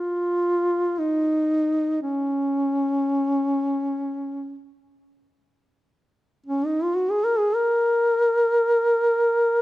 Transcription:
Already playing: F4
0.98 D#4
2.02 C#4
6.46 C#4
6.66 D#4
6.83 F4
6.96 F#4
7.10 G#4
7.24 A#4
7.38 G#4
7.55 A#4

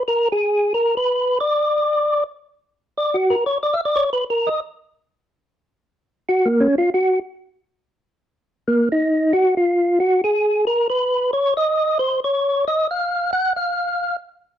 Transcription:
0.08 A#4
0.32 G#4
0.74 A#4
0.97 B4
1.40 D5
2.97 D5
3.14 F#4
3.30 A#4
3.46 C#5
3.63 D5
3.74 E5
3.86 D5
3.96 C#5
4.13 B4
4.31 A#4
4.47 D#5
6.28 F#4
6.45 A#3
6.60 C#4
6.78 F4
6.94 F#4
8.68 A#3
8.92 D#4
9.34 F#4
9.57 F4
10.00 F#4
10.24 G#4
10.67 A#4
10.90 B4
11.34 C#5
11.57 D#5
11.99 C5
12.24 C#5
12.68 D#5
12.91 F5
13.33 F#5
13.56 F5

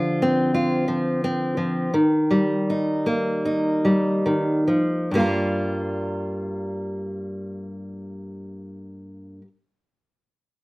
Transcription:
Already playing: D3 F3 F4
0.22 C4
0.54 F4
0.88 F3
1.24 C4
1.57 F3
1.94 D#3
2.31 G3
2.70 D#4
3.06 A#3
3.45 D#4
3.85 G3
4.26 D#3
4.68 F3
5.11 G2 G3 A#3
5.17 F4 A#4

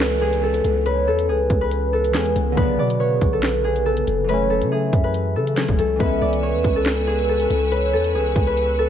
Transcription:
Already playing: C#2 E3 G#3 B3 C#4 A4 B4 C#5, downlifter
0.00 snare, clap
0.21 G#4
0.33 closed hi-hat
0.43 A4
0.54 closed hi-hat
0.64 C#2, closed hi-hat
0.86 B4 C#5, closed hi-hat
1.07 E2 A4
1.19 closed hi-hat
1.29 C#2 G#4 B4
1.50 C#2, kick, closed hi-hat
1.61 B4
1.71 closed hi-hat
1.93 A4
2.04 closed hi-hat
2.12 E2 E3 G#3 B3 G#4, snare, clap, closed hi-hat
2.17 C#4
2.25 closed hi-hat
2.36 C#2, closed hi-hat
2.52 D3 F#3
2.57 B1 B3 B4 D5, kick, closed hi-hat
2.61 C#3
2.79 B2 D5
2.90 closed hi-hat
3.00 B4 C#5
3.21 B1, kick, closed hi-hat
3.33 A4
3.43 snare, clap
3.64 G#4
3.76 closed hi-hat
3.86 A4
3.97 closed hi-hat
4.07 F#1, closed hi-hat
4.24 E3 F#3
4.29 A3 B4 C#5, closed hi-hat
4.34 C#4
4.50 A4
4.61 C#3, closed hi-hat
4.71 G#4 E5
4.93 F#2, kick, closed hi-hat
5.04 B4
5.14 closed hi-hat
5.36 C#3 A4
5.47 closed hi-hat
5.55 E3 F#3 A3 G#4, snare, clap, closed hi-hat
5.60 C#4
5.68 F#1, kick, closed hi-hat
5.79 C#2 A4, closed hi-hat
5.96 E3 G#3
6.00 C#2 B3 B4 E5 G#5 C#6 E6, kick, closed hi-hat
6.05 C#4
6.21 C#2 D5
6.33 closed hi-hat
6.43 B4 C#5
6.54 E2
6.64 C#2, kick, closed hi-hat
6.76 A4
6.86 snare, clap
7.07 G#4
7.19 closed hi-hat
7.29 A4
7.40 closed hi-hat
7.50 C#2, closed hi-hat
7.71 B4 C#5, closed hi-hat
7.93 E2 A4
8.04 closed hi-hat
8.14 C#2 G#4 B4
8.36 C#2, kick, closed hi-hat
8.47 B4
8.57 closed hi-hat
8.79 A4

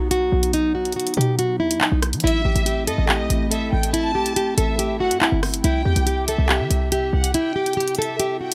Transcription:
Already playing: B1 F#3 B3 D#4
0.11 F#4, closed hi-hat
0.32 B1
0.43 closed hi-hat
0.53 D#4, closed hi-hat
0.75 F#4
0.85 closed hi-hat
0.92 D#3 F#4, closed hi-hat
1.00 closed hi-hat
1.07 closed hi-hat
1.14 B2 G4, closed hi-hat
1.21 closed hi-hat
1.39 F#4, closed hi-hat
1.60 D#2 E4
1.71 closed hi-hat
1.76 B2
1.81 D#4, clap
1.92 B1
2.02 cross-stick, closed hi-hat
2.13 F#3, closed hi-hat
2.20 A1 A3 C4 E4 E5, closed hi-hat
2.27 closed hi-hat
2.45 A1 G4
2.56 A1, closed hi-hat
2.66 G4, closed hi-hat
2.87 A2 A4 D#5, closed hi-hat
2.98 A1
3.09 G4, clap
3.19 B1
3.30 A1, closed hi-hat
3.51 A4 E5, closed hi-hat
3.72 A1 G5
3.83 closed hi-hat
3.93 E4 A5, closed hi-hat
4.15 B1 G4
4.26 closed hi-hat
4.36 A1 G4, closed hi-hat
4.58 A1 A4 E5, closed hi-hat
4.79 G4, closed hi-hat
5.00 F#4 F#5
5.11 A2, closed hi-hat
5.21 A1 E4, clap
5.32 G1
5.43 cross-stick, open hi-hat
5.54 closed hi-hat
5.64 C2 C3 E4 G4 G5, closed hi-hat
5.85 E2 G4
5.96 C2, closed hi-hat
6.07 G4, closed hi-hat
6.28 A4 E5, closed hi-hat
6.38 C2
6.49 G4, clap
6.60 E3
6.70 C2, closed hi-hat
6.92 G4 E5, closed hi-hat
7.13 C2 F#5
7.24 closed hi-hat
7.34 E4 G5, closed hi-hat
7.56 G4
7.66 closed hi-hat
7.73 G4, closed hi-hat
7.80 closed hi-hat
7.88 closed hi-hat
7.95 A4 E5, closed hi-hat
8.02 closed hi-hat
8.20 G4, closed hi-hat
8.41 F#4 G5

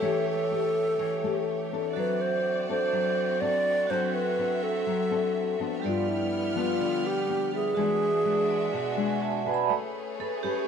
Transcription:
Already playing: A3 G4 A4 C#5 E5
0.00 E3 A3 C#4 G4 B4 C#5
0.05 E5
0.29 A4
0.51 A3 C#4 G4
0.99 E3
1.24 A3 C#4 G4
1.72 C4 D4 A4
1.93 F#3 C4 F#4 A4 D5
1.98 B4 C5 E5
2.21 C5
2.69 C4 D4 A4 C5
2.93 F#3
3.41 C4 D4 A4 D5
3.87 F#3 C4 D4 F#4 A4 C5 E5
3.91 C4 A4 F#5
4.14 B4
4.38 C4 D4 A4
4.63 A4
4.86 F#3
5.11 C4 D4 A4
5.59 F3 B3 D4
5.80 G3 G4 A4 F6
5.84 G2 B3 F4 B4 D5
6.09 E4
6.55 F3 B3 D4 F4
6.81 D3
7.06 G4
7.29 F3 B3 D4
7.52 G3 F4 G#4 A4 B4 E5
7.75 E3 G#3 D4 F#4 G#5
7.79 G#3 F#4 B4 D5 E5
8.24 G#3 D4 F#4
8.50 D5
8.58 E5
8.73 B2 F#5
8.97 G#3 D4 F#4
9.06 G#5
9.22 A5
9.46 C#4 G#4 B4
9.54 B5
9.70 A3 G#4 B4 C#5
10.19 C#4 G#4 A4 B4
10.43 C#4 G4 G#4 B4

